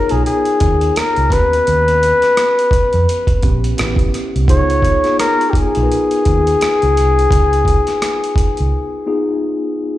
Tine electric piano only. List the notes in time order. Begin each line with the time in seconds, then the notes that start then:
Already playing: B3 D#4 F4 G#4 C#5
0.10 B3 D#4 F4 G#4
0.18 A#4
1.30 B3 C#4 G4 B4
3.43 B3 C#4 G4 B4
3.77 B3 C#4 E4 F#4
3.85 G4
4.48 B3 D#4 F4 G#4
5.04 B3 D#4 F4 G#4
5.75 B3 D#4 F4 A#4
5.83 B4
9.06 B3 D#4 F4 G#4